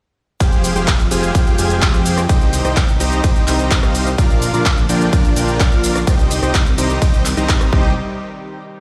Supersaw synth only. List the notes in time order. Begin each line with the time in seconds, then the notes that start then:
0.40 G4 G#4 C5 F5 G5
0.76 G4 G#4 C5 F5 G5
1.11 G4 G#4 C5 F5 G#5
1.35 G4 G#4 C5 F5 G5
1.58 G4 G#4 C5 F5 G#5
1.94 G4 G#4 C5 F5 G5
2.29 D#4 G4 C5 D#5 G5
2.65 D#4 G4 C5 D#5 G5
3.00 D#4 G4 C5 D#5 A#5
3.24 D#4 G4 C5 D#5 G5
3.48 D#4 G4 C5 D#5 A#5
3.83 D#4 G4 C5 D#5 F5
4.18 D4 F4 A#4 D5 F5
4.54 D4 F4 A#4 D5 F5
4.89 D4 F4 A#4 D5 G5
5.13 D4 F4 A#4 D5 F5
5.37 D4 F4 A#4 D5 G5
5.72 D4 F4 A#4 D5 F5
6.07 D#4 G4 C5 D#5 G5
6.43 D#4 G4 C5 D#5 G5
6.78 D#4 G4 C5 D#5 A#5
7.02 D#4 G4 C5 D#5 G5
7.37 D#4 G4 C5 D#5 A#5
7.73 D#4 G4 C5 D#5 G5